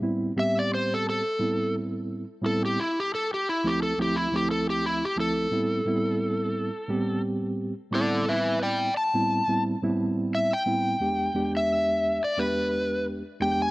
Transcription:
X:1
M:4/4
L:1/16
Q:"Swing 16ths" 1/4=88
K:Am
V:1 name="Electric slide guitar"
z2 e d c A A4 z4 A G | E G A G E G A G E G A G E G A2- | A8- A2 z4 [Ad]2 | [Be]2 [dg]2 a4 z4 e g3- |
g3 e4 d B4 z2 g ^g |]
V:2 name="Reed electric piano"
[A,,G,B,CE]2 [A,,G,B,CG]4- [A,,G,B,CG] z [A,,G,B,CE]4- [A,,G,B,CE] z [A,,G,B,CE]2 | z4 z [D,,F,A,CE]2 [D,,F,A,CE]2 [D,,F,A,CE]4 z [D,,F,A,CE]2 | [A,,G,B,CE]2 [A,,G,B,CE]4- [A,,G,B,CE] z [A,,G,B,CG]4- [A,,G,B,CG] z [A,,G,B,CE]2- | [A,,G,B,CE]4 z [A,,G,B,CE]2 [A,,G,B,CE]2 [A,,G,B,CE]4 z [A,,G,B,CE]2 |
[E,,^G,B,D=G]2 [E,,^G,B,D=G]4- [E,,^G,B,D=G] z [E,,^G,B,D=G]4- [E,,^G,B,D=G] z [E,,^G,B,D=G]2 |]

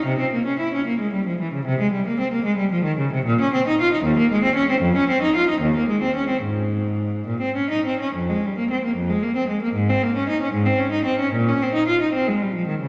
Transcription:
X:1
M:6/8
L:1/16
Q:3/8=75
K:Cphr
V:1 name="Cello"
C, C B, D =E D B, A, G, F, =E, D, | [K:Ab] C, A, G, B, C B, A, G, F, E, D, C, | B,, D C E F E E,, B, A, C D C | F,, D C E F E E,, B, A, C D C |
A,,6 B,, C D E C D | [K:Fm] F,, A, G, B, C B, F,, A, B, C A, B, | A,, C B, D E D A,, C D E C D | B,, D C E F E C A, G, F, E, D, |]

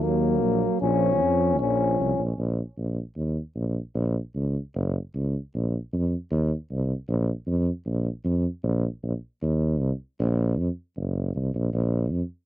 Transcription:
X:1
M:2/4
L:1/8
Q:"Swing 16ths" 1/4=154
K:Bbm
V:1 name="Euphonium"
B,4 | D4 | D3 z | z4 |
z4 | z4 | z4 | z4 |
z4 | z4 | z4 | z4 |
z4 | z4 | z4 | z4 |]
V:2 name="Euphonium" clef=bass
G,4 | F,4 | F,3 z | z4 |
z4 | z4 | z4 | z4 |
z4 | z4 | z4 | z4 |
z4 | z4 | z4 | z4 |]
V:3 name="Tuba" clef=bass
E,,2 B,,,2 | B,,,2 F,,2 | B,,,2 C,, B,,, | B,,,2 B,,,2 |
E,,2 B,,,2 | B,,,2 D,,2 | G,,,2 D,,2 | B,,,2 F,,2 |
E,,2 C,,2 | B,,,2 F,,2 | B,,,2 F,,2 | B,,,2 B,,, z |
E,,2 C,, z | B,,,2 F,, z | G,,,2 C,, B,,, | B,,,2 F,, z |]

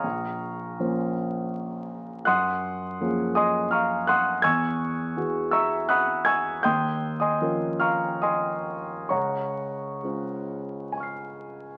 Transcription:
X:1
M:3/4
L:1/16
Q:1/4=80
K:Db
V:1 name="Grand piano"
[fbd'f']6 z6 | [gc'e'g']6 [eac'e']2 [fbd'f']2 [gc'e'g']2 | [^gd'=e'^g']6 [=ebd'e']2 [^f=b_e'^f']2 [gd'=e'g']2 | [=gc'e'=g']3 [eac'e']3 [fbd'f']2 [eac'e']4 |
[dgbd']8 [ad'f'c'']4 |]
V:2 name="Grand piano"
B,,,4 [F,B,Dc]8 | G,,4 [F,B,DA]8 | =E,,4 [=E,=B,^F^G]8 | E,,4 [F,DFB]8 |
D,,4 [A,DFc]8 |]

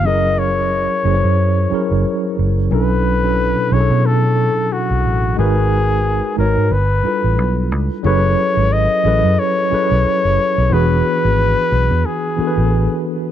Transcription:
X:1
M:4/4
L:1/16
Q:"Swing 16ths" 1/4=90
K:Bmix
V:1 name="Flugelhorn"
d2 c12 z2 | B6 c2 A4 F4 | G6 ^A2 B6 z2 | c4 d4 c8 |
B8 G6 z2 |]
V:2 name="Tine electric piano"
[F,CEG^A]4- [F,CEGA] z [F,CEG^Bc]3 z [F,CEGA]4- [F,CEGA] z | [B,,F,C=DEA]2 z [B,,F,CDEA]2 z [B,,F,CDEGA]6 z4 | [G,DF^AB]4- [G,DFAB] z [G,DFAc]2 z2 [=G,=DE=F=AB]4- [G,DEFAB] z | [F,CEGAB]4- [F,CEGAB] z [F,CEGAB]3 z [F,CEGAB]4- [F,CEGAB] z |
[E,B,=DFG]6 z4 [E,B,DFAB]4- [E,B,DFAB] z |]
V:3 name="Fingered electric bass" clef=bass
F,,,4- F,,, z F,,, F,,3 z F,,, z2 F,,,2 | B,,,4- B,,, z B,,, B,,4 z2 B,,, A,,,2 | G,,,4- G,,, z G,,, G,, =G,,,2 z A,,, B,,,2 C,, z | F,,,2 z G,,,2 z A,,, F,, z3 B,,, z F,,, z B,,, |
E,,,2 z G,,,2 z B,,, E,, z3 A,,,2 z3 |]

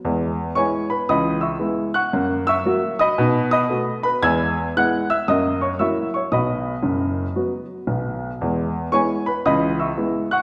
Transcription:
X:1
M:4/4
L:1/8
Q:"Swing" 1/4=115
K:E
V:1 name="Upright piano"
z2 [cgc'] [Bb] [dbd'] [ec'e']2 [fc'f']- | [fc'f'] [ec'e']2 [dbd']2 [dbd']2 [Bb] | [ge'g']2 [ff'] [ee'] [dd'] [cc'] [ec'e'] [cc'] | [dbd']6 z2 |
z2 [cgc'] [Bb] [dbd'] [ec'e']2 [fc'f'] |]
V:2 name="Upright piano" clef=bass
[E,,G,]2 [G,B,E]2 [C,,E,]2 [G,B,E]2 | [F,,^A,]2 [F,A,F]2 [B,,D]2 [=A,B,F]2 | [E,,G,]2 [G,B,E]2 [F,,^A,]2 [F,A,E]2 | [B,,,B,,]2 [F,,,F,,]2 [F,B,F]2 [B,,,B,,]2 |
[E,,G,]2 [G,B,E]2 [C,,E,]2 [G,B,E]2 |]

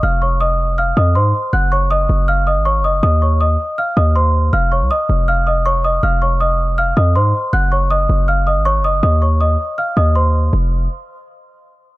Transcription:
X:1
M:4/4
L:1/16
Q:1/4=160
K:Fphr
V:1 name="Celesta"
[ff']2 [dd']2 [ee']4 [ff']2 [ee']2 [cc']4 | [gg']2 [dd']2 [ee']4 [ff']2 [ee']2 [dd']2 [ee']2 | [ee']2 [dd']2 [ee']4 [ff']2 [ee']2 [cc']4 | [ff']2 [dd']2 [ee']4 [ff']2 [ee']2 [dd']2 [ee']2 |
[ff']2 [dd']2 [ee']4 [ff']2 [ee']2 [cc']4 | [gg']2 [dd']2 [ee']4 [ff']2 [ee']2 [dd']2 [ee']2 | [ee']2 [dd']2 [ee']4 [ff']2 [ee']2 [cc']4 | z16 |]
V:2 name="808-style bass" clef=bass
F,,,8- F,,,2 F,,2 A,,2 z2 | G,,,6 G,,,4- G,,, A,,,2- A,,,/2 G,,,2- G,,,/2 | E,,6 z4 E,,6 | F,,,3 C,, z2 F,,,8- F,,,2 |
F,,,8- F,,,2 F,,2 A,,2 z2 | G,,,6 G,,,4- G,,, A,,,2- A,,,/2 G,,,2- G,,,/2 | E,,6 z4 E,,6 | F,,,4 z12 |]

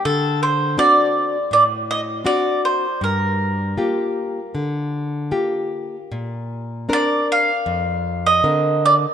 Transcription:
X:1
M:4/4
L:1/16
Q:1/4=78
K:Gm
V:1 name="Mandolin"
A2 c2 d4 d2 e2 d2 c2 | B12 z4 | [K:Bb] z4 d2 f4- f e3 d2 |]
V:2 name="Nylon-string guitar"
D,4 [CD^F]4 A,,4 [CDF]4 | G,,4 [B,FG]4 D,4 [B,FG]4 | [K:Bb] B,,4 [CDB]4 F,,4 [D,CB]4 |]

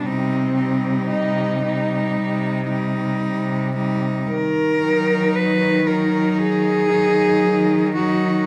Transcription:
X:1
M:4/4
L:1/8
Q:1/4=56
K:Cm
V:1 name="Cello"
C2 E3 z3 | [K:Ebm] B2 c B A3 G |]
V:2 name="Cello"
E E2 E2 E2 E | [K:Ebm] z E2 E2 E2 E |]
V:3 name="Cello" clef=bass
G, G,2 G,2 G,2 G, | [K:Ebm] z G,2 G,2 G,2 G, |]
V:4 name="Cello" clef=bass
C,2 C,2 C,2 C,2 | [K:Ebm] E,2 E,2 E,2 E,2 |]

